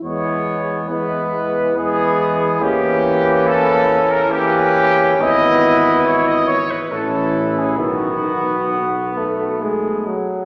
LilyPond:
<<
  \new Staff \with { instrumentName = "Trumpet section" } { \time 3/4 \key e \major \tempo 4 = 69 cis''4 b'4 gis'4 | g'4 a'8. bes'16 g'4 | dis''4 cis''16 dis''16 cis''16 b'16 a'8. gis'16 | fis'2 r4 | }
  \new Staff \with { instrumentName = "Flugelhorn" } { \time 3/4 \key e \major b4 b4 b4 | cis'2 cis'4 | e'4. r8 e'4 | b2~ b8 r8 | }
  \new Staff \with { instrumentName = "Euphonium" } { \time 3/4 \key e \major gis4 gis4 gis4 | bes2 bes4 | b4. r8 cis'4 | b2 a8 r8 | }
  \new Staff \with { instrumentName = "Trombone" } { \clef bass \time 3/4 \key e \major e4 e4 e4 | e2 e4 | e4. r8 e4 | dis4 b8 a8 gis8 fis8 | }
  \new Staff \with { instrumentName = "Tuba" } { \clef bass \time 3/4 \key e \major e,2.~ | e,2. | gis,,4. r8 a,,4 | b,,2~ b,,8 r8 | }
>>